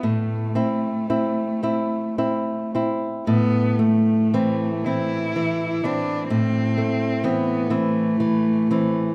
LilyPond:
<<
  \new Staff \with { instrumentName = "Nylon-string guitar" } { \time 6/8 \key a \minor \tempo 4. = 39 a,8 <c' e'>8 <c' e'>8 <c' e'>8 <c' e'>8 <c' e'>8 | a,8 a8 <e c'>8 <e c'>8 e8 <e c'>8 | a,8 a8 <e c'>8 <e c'>8 e8 <e c'>8 | }
  \new Staff \with { instrumentName = "Cello" } { \time 6/8 \key a \minor a2~ a8 r8 | b8 a4 e'4 d'8 | c'4 b8 a4. | }
>>